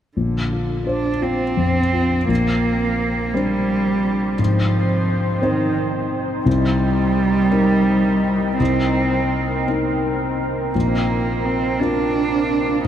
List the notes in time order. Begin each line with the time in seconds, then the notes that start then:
0.17 A#1 D3
0.51 F4
0.87 D4 C5
1.21 C4 F4
1.57 F2
1.93 F4
2.28 A#1 A#3 C4 D4 C5
3.34 G3 C4 D4 C5
4.38 G#2 F3 D#4
5.42 D#3 C4 D#4 C5
6.44 C2 G3 C4 A#4
7.51 C4 D#4 A#4
8.59 C2 C4
9.68 C4 D#4 A#4
10.74 A#1 A#3 F4
11.46 C4
11.80 C4 D4 F4 A#4